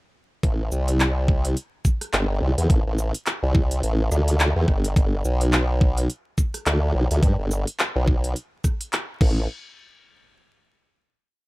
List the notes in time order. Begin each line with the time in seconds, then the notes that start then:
0.43 A1, kick, closed hi-hat
0.72 C2, shaker
0.88 closed hi-hat
1.00 clap, closed hi-hat
1.28 kick
1.45 closed hi-hat
1.57 closed hi-hat
1.85 kick, shaker
2.01 cross-stick, closed hi-hat
2.13 G1, clap, closed hi-hat
2.42 C2
2.58 E2, closed hi-hat
2.70 A1, kick, closed hi-hat
2.86 A1
2.98 shaker
3.14 closed hi-hat
3.26 clap, closed hi-hat
3.43 C2
3.55 kick
3.71 closed hi-hat
3.83 A1, closed hi-hat
4.12 D2, cross-stick, shaker
4.28 closed hi-hat
4.40 clap, closed hi-hat
4.56 E2
4.68 G1, kick, cross-stick
4.84 closed hi-hat
4.96 G1, kick, closed hi-hat
5.25 B1, shaker
5.41 closed hi-hat
5.53 clap, closed hi-hat
5.81 kick
5.97 closed hi-hat
6.10 closed hi-hat
6.38 kick, shaker
6.54 cross-stick, closed hi-hat
6.66 D2, clap, closed hi-hat
6.95 B1
7.11 D2, closed hi-hat
7.23 G2, kick, closed hi-hat
7.39 G1
7.51 shaker
7.67 closed hi-hat
7.79 clap, closed hi-hat
7.96 B1
8.08 kick
8.24 closed hi-hat
8.36 closed hi-hat
8.64 kick, cross-stick, shaker
8.81 closed hi-hat
8.93 clap, closed hi-hat
9.21 A1, kick, crash